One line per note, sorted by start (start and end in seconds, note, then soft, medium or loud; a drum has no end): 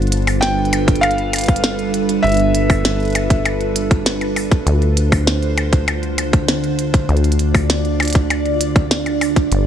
0.00 2.21 G1 medium
0.00 4.63 G3 medium
0.00 4.63 D4 medium
0.00 4.63 F4 medium
0.00 4.63 A4 medium
0.00 4.63 B4 medium
0.00 closed hi-hat soft
0.07 closed hi-hat soft
0.12 closed hi-hat loud
0.17 closed hi-hat soft
0.22 closed hi-hat soft
0.27 open hi-hat medium
0.27 percussion blips medium
0.41 1.04 G5 loud
0.41 snare loud
0.41 closed hi-hat medium
0.65 closed hi-hat soft
0.73 closed hi-hat medium
0.73 percussion blips medium
0.88 kick loud
0.88 closed hi-hat medium
0.96 closed hi-hat soft
1.01 1.89 F5 loud
1.01 closed hi-hat medium
1.01 percussion blips medium
1.11 closed hi-hat soft
1.18 closed hi-hat soft
1.33 closed hi-hat medium
1.33 percussion blips medium
1.36 closed hi-hat medium
1.38 closed hi-hat medium
1.41 closed hi-hat soft
1.44 closed hi-hat soft
1.46 kick loud
1.46 closed hi-hat soft
1.49 closed hi-hat medium
1.56 closed hi-hat medium
1.64 snare loud
1.79 closed hi-hat soft
1.94 closed hi-hat medium
2.09 closed hi-hat medium
2.23 4.64 G1 medium
2.23 3.41 E5 loud
2.23 closed hi-hat soft
2.27 closed hi-hat soft
2.29 closed hi-hat soft
2.32 closed hi-hat soft
2.34 closed hi-hat soft
2.37 closed hi-hat soft
2.55 closed hi-hat medium
2.70 kick loud
2.70 open hi-hat medium
2.70 percussion blips medium
2.85 snare loud
2.85 closed hi-hat medium
3.00 closed hi-hat soft
3.03 closed hi-hat soft
3.05 closed hi-hat soft
3.08 closed hi-hat soft
3.10 closed hi-hat soft
3.13 closed hi-hat soft
3.15 closed hi-hat medium
3.15 percussion blips medium
3.30 kick loud
3.30 closed hi-hat medium
3.46 closed hi-hat medium
3.46 percussion blips medium
3.61 closed hi-hat soft
3.76 closed hi-hat medium
3.91 kick loud
3.91 closed hi-hat medium
4.06 snare loud
4.06 closed hi-hat medium
4.21 closed hi-hat soft
4.21 percussion blips soft
4.36 open hi-hat medium
4.36 percussion blips medium
4.52 kick loud
4.52 closed hi-hat medium
4.67 7.06 D2 medium
4.67 9.48 D3 medium
4.67 9.67 D4 medium
4.67 9.67 F4 medium
4.67 7.07 C5 medium
4.67 closed hi-hat medium
4.82 closed hi-hat soft
4.97 closed hi-hat medium
5.12 kick loud
5.12 open hi-hat medium
5.12 percussion blips medium
5.27 snare loud
5.27 closed hi-hat medium
5.43 closed hi-hat soft
5.58 closed hi-hat medium
5.58 percussion blips medium
5.73 kick loud
5.73 closed hi-hat medium
5.88 closed hi-hat medium
5.88 percussion blips medium
6.03 closed hi-hat soft
6.18 closed hi-hat medium
6.18 percussion blips soft
6.33 kick loud
6.33 closed hi-hat medium
6.48 snare loud
6.48 closed hi-hat soft
6.64 closed hi-hat soft
6.79 closed hi-hat medium
6.94 kick loud
6.94 closed hi-hat medium
7.09 9.48 D2 medium
7.09 9.49 D5 medium
7.09 closed hi-hat soft
7.17 closed hi-hat soft
7.24 closed hi-hat soft
7.32 closed hi-hat soft
7.39 closed hi-hat medium
7.54 kick loud
7.54 open hi-hat medium
7.54 percussion blips medium
7.70 snare loud
7.70 closed hi-hat soft
7.85 closed hi-hat soft
8.00 closed hi-hat soft
8.00 percussion blips medium
8.03 closed hi-hat soft
8.05 closed hi-hat medium
8.08 closed hi-hat medium
8.10 closed hi-hat medium
8.13 kick loud
8.13 closed hi-hat medium
8.30 closed hi-hat medium
8.30 percussion blips medium
8.46 closed hi-hat soft
8.61 closed hi-hat medium
8.76 kick loud
8.76 closed hi-hat medium
8.91 snare loud
8.91 closed hi-hat soft
9.06 closed hi-hat soft
9.06 percussion blips soft
9.21 open hi-hat medium
9.21 percussion blips medium
9.36 kick loud
9.36 closed hi-hat medium
9.52 9.67 G1 medium
9.52 closed hi-hat medium